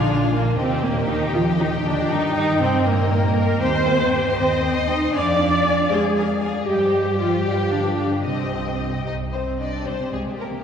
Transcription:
Already playing: double bass section A#1, cello section D3, viola section D4, violin section F4 F5 G#5
0.33 cello section A#2, viola section A#3
0.58 double bass section D#2, cello section C3, viola section C4, violin section G4 D#5 G5
0.83 cello section A#2, viola section A#3
1.08 cello section D#3, viola section D#4
1.34 cello section F3, viola section F4
1.59 cello section D#3, viola section D#4
1.84 cello section D3, viola section D4
2.10 double bass section G2, cello section D#3, viola section D#4
2.36 cello section D#3, viola section D#4
2.61 cello section C3, viola section C4
2.85 cello section A#2, viola section A#3, violin section A#4
3.37 cello section A#3, viola section A#4
3.60 double bass section D#2, cello section C4, violin section G4 C5 G5, viola section C5
3.73 violin section D#5 C6
3.86 violin section F4 C5 G5
3.99 violin section D#5 C6
4.12 violin section G4 C5 G5
4.26 violin section D#5 C6
4.37 double bass section D#2, cello section C4, violin section C5 D#5 G5, viola section C5
4.50 violin section D#5 C6
4.63 violin section C5 G5
4.75 violin section D#5 C6
4.89 cello section D#4, violin section C5 G5, viola section D#5
5.01 violin section D#5 C6
5.13 double bass section F2, cello section D4, violin section D5 F5 G#5, viola section D5
5.27 violin section D5 F5
5.40 violin section F5 G#5
5.51 violin section D5 F5
5.64 violin section F5 G#5
5.78 violin section D5 F5
5.90 double bass section F2, cello section G#3, viola section G#4, violin section C5 F5 G#5
6.04 violin section D5 F5
6.16 violin section A#4 F5 G#5
6.30 violin section D5 F5
6.41 violin section G#4 F5 G#5
6.54 violin section D5 F5
6.66 double bass section G2, cello section G3, violin section G4 D#5, viola section G4
6.78 violin section C5 G5
6.91 violin section G4 D#5
7.05 violin section C5 G5
7.16 cello section F3, viola section F4, violin section G4 D#5
7.29 violin section C5 G5
7.45 double bass section G2, cello section G3, viola section G4, violin section D5 F5
7.56 violin section B4 G5
7.69 cello section D3, viola section D4, violin section D5 F5
7.85 violin section B4 G5
7.96 violin section D5 F5
8.12 violin section B4 G5
8.24 double bass section C2, cello section C3, viola section C4, violin section G4 D#5
8.38 violin section C5 G5
8.52 violin section G4 D#5
8.65 violin section C5 G5
8.79 violin section G4 D#5
8.93 violin section C5 G5
9.05 double bass section C2, viola section D#4, violin section G4 D#5
9.33 viola section C4, violin section C5
9.60 viola section D4, violin section D5 D#5
9.86 double bass section C2, cello section C3, viola section C4, violin section G4 C5
9.99 cello section C3
10.12 double bass section C2, cello section C3, viola section G#3, violin section G#4
10.25 cello section C3
10.38 viola section A#3, violin section A#4
10.50 cello section C3

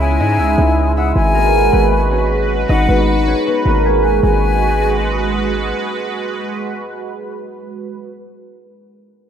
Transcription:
Already playing: 808-style bass C#2, analog synth pad C#3 G#3 E4, harp G#3 B3 C#4 E4 G#4 B4 C#5 E5
0.00 flute G#5
0.19 808-style bass G#2, harp D#4 D#5
0.39 808-style bass C#2, harp E4 E5
0.58 808-style bass C#2
0.97 harp E4 E5, flute F#5
1.16 808-style bass G#1, harp G#3 G#4, analog synth pad F#4 B4, flute G#5
1.35 harp A#3 A#4
1.73 808-style bass G#1, harp B3 B4
2.11 harp C#4 C#5
2.69 808-style bass G#1, harp D#4 D#5, flute F#5
2.89 808-style bass G#1, harp B3 B4
3.08 flute F#5
3.27 harp C#4 C#5
3.47 harp B3 B4
3.66 808-style bass G#1, harp A#3 A#4
3.85 harp G#3 G#4
4.04 flute G#5
4.23 808-style bass G#1, analog synth pad G#3 F#4 B4, harp G#3, flute G#5

